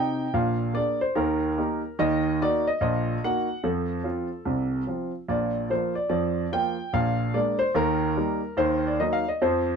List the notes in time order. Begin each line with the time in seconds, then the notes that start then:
Already playing: C3 D#4 G5
0.33 A#1 A#2 F5
0.73 A#3 D4 G#4 D5
1.01 C5
1.15 D#2 D#3 A#4
1.58 A#3 D#4 G4
1.99 D#2 D#3 D#5
2.41 A#3 D#4 F#4 D5
2.67 D#5
2.81 A#1 A#2 D#5
3.24 A#3 D#4 F#4 F#5
3.63 F2 F3 A4
4.04 F3 C4 F4
4.45 C2 C3
4.87 F3 C4 F4
5.28 A#1 A#2 D5
5.70 F3 A#3 F4 C5
5.95 D5
6.09 F2 F3 D5
6.52 F3 A#3 F4 G5
6.93 A#1 A#2 F5
7.34 G#3 A#3 D4 D5
7.59 C5
7.75 D#2 D#3 A#4
8.17 G3 A#3 D#4
8.57 D#2 D#3 C5
8.87 D5
8.99 F#3 A#3 D#4 D#5
9.13 F5
9.28 D#5
9.42 F2 F3 C5